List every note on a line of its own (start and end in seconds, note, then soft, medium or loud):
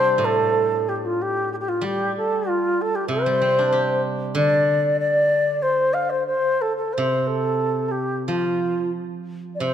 0.00 0.18 C3 medium
0.00 0.69 G3 soft
0.00 0.85 C4 soft
0.00 1.02 D4 soft
0.00 1.17 G4 soft
0.00 0.26 C5 medium
0.18 2.13 A2 medium
0.24 0.90 A4 medium
0.88 0.95 G4 medium
0.95 1.06 G4 medium
1.05 1.23 F4 medium
1.21 1.51 G4 medium
1.52 1.54 G4 medium
1.60 1.70 G4 medium
1.68 1.85 F4 medium
1.81 3.25 G3 medium
1.81 2.15 G4 medium
2.16 2.49 A4 medium
2.48 2.83 F4 medium
2.81 2.97 A4 medium
2.95 3.08 G4 medium
3.08 4.36 C3 medium
3.08 4.00 C5 medium
3.26 4.53 G3 soft
3.42 4.69 C4 soft
3.59 4.86 D4 soft
3.73 5.01 G4 soft
4.35 6.31 D3 medium
4.35 4.97 D5 loud
4.99 5.64 D5 loud
5.62 5.94 C5 medium
5.93 6.11 F5 medium
6.10 6.26 C5 medium
6.26 6.63 C5 medium
6.61 6.76 A4 medium
6.77 6.95 A4 medium
6.93 7.24 C5 medium
6.98 8.28 C3 medium
7.24 7.88 A4 medium
7.24 7.28 C5 medium
7.88 8.25 G4 medium
7.88 7.92 A4 medium
8.26 9.74 F3 soft
8.26 8.89 F4 medium
9.55 9.61 D5 medium
9.59 9.74 C3 medium
9.59 9.74 C5 medium